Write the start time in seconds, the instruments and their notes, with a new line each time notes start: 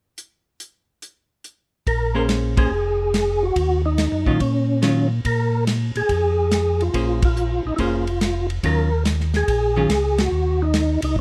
0.18 closed hi-hat
0.60 closed hi-hat
1.02 closed hi-hat
1.44 closed hi-hat
1.87 tonewheel organ A#1 A#4, kick, ride
2.15 hollow-body jazz guitar A#3 C#4 G#4 C5
2.29 snare, hi-hat pedal, ride
2.57 hollow-body jazz guitar A#3 C#4 G#4 C5, tonewheel organ G#4, kick, ride
2.71 tonewheel organ F1
3.14 snare, hi-hat pedal, ride
3.43 tonewheel organ F#4
3.56 tonewheel organ D#2, kick, ride
3.86 tonewheel organ D#4
3.98 snare, hi-hat pedal, ride
4.12 tonewheel organ F#2
4.26 tonewheel organ A#2 D#4, hollow-body jazz guitar D#3 F#3 C#4 F4, kick
4.40 tonewheel organ A#2 C#4, kick, ride
4.82 hollow-body jazz guitar D#3 F#3 C#4 F4, snare, hi-hat pedal, ride
5.25 tonewheel organ A#2 A#4, kick, ride
5.67 snare, hi-hat pedal, ride
5.95 tonewheel organ A#2 G#4, ride
6.09 tonewheel organ F2, kick, ride
6.51 snare, hi-hat pedal, ride
6.80 tonewheel organ F4, ride
6.94 tonewheel organ A#1, hollow-body jazz guitar A#3 C#4 G#4 C5, kick, ride
7.22 tonewheel organ F4, kick, ride
7.36 hi-hat pedal
7.65 tonewheel organ A#1 D#4
7.76 tonewheel organ F1 E4, hollow-body jazz guitar A#3 C#4 G#4 C5, kick, ride
7.81 tonewheel organ F4
8.07 ride
8.21 snare, hi-hat pedal, ride
8.50 ride
8.63 tonewheel organ D#2 A#4, hollow-body jazz guitar D#3 F#3 C#4 F4, kick, ride
9.05 snare, hi-hat pedal, ride
9.20 snare
9.34 tonewheel organ G#4, snare, ride
9.48 tonewheel organ A#1, kick, ride
9.76 hollow-body jazz guitar D#3 F#3 C#4 F4
9.89 tonewheel organ C#2, snare, hi-hat pedal, ride
10.18 tonewheel organ F#4, snare, ride
10.31 tonewheel organ D#2
10.62 tonewheel organ D#4
10.74 snare, hi-hat pedal, ride
11.02 tonewheel organ C#2 D#4, ride
11.16 tonewheel organ F#2, kick